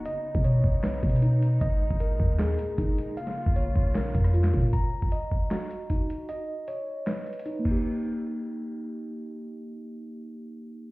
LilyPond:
<<
  \new Staff \with { instrumentName = "Tine electric piano" } { \time 4/4 \key ces \lydian \tempo 4 = 154 dis''4 cis''4 b'4 dis'4 | ees''4 bes'4 aes'4 ees'4 | f''4 des''4 bes'4 f'4 | bes''4 ees''4 ges'4 ees'4 |
dis''4 cis''4 b'4 dis'8 <bes ees' g'>8~ | <bes ees' g'>1~ | <bes ees' g'>1 | }
  \new Staff \with { instrumentName = "String section" } { \time 4/4 \key ces \lydian << { dis'1~ | dis'1 | f'1 | r1 |
r1 | r1 | r1 | } \\ { <cis b>1 | <bes, aes>1 | <des bes>1 | r1 |
r1 | r1 | r1 | } >> }
  \new Staff \with { instrumentName = "808-style bass" } { \clef bass \time 4/4 \key ces \lydian r8. b,8. b,,4 b,4. | aes,,8. aes,,8. ees,4 r8 aes,,8 r8 | r8. bes,,8. bes,,4 f,4 bes,8 | r1 |
r1 | r1 | r1 | }
  \new DrumStaff \with { instrumentName = "Drums" } \drummode { \time 4/4 hh8. bd16 hh8 bd8 \tuplet 3/2 { <hc hh sn>16 r16 r16 <hh bd>16 hh16 hh16 } hh8 hh8 | <hh bd>8. bd16 hh8 bd8 <hc hh sn>8 hh8 <hh bd>8 hh8 | hh16 sn8 bd16 hh8 bd8 <hc hh sn>8 <hh bd>16 <hh ss>16 hh16 <hc sn>16 <hho bd>8 | <hh bd>8. bd16 hh8 bd8 <hc hh sn>8 hh8 <hh bd>8 hh8 |
hh4 hh4 \tuplet 3/2 { <hc hh sn>16 r16 r16 hh16 hh16 hh16 } hh8 <cymc bd>8 | r4 r4 r4 r4 | r4 r4 r4 r4 | }
>>